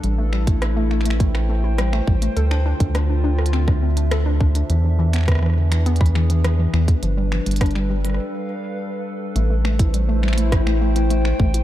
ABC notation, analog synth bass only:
X:1
M:4/4
L:1/16
Q:1/4=103
K:Am
V:1 name="Analog synth bass" clef=bass
A,,,12- A,,,2 A,,, z | D,,3 D,,12- D,, | E,,12- E,,2 E,, z | G,,,3 G,,,4- G,,, z8 |
A,,,12- A,,,2 A,,, z |]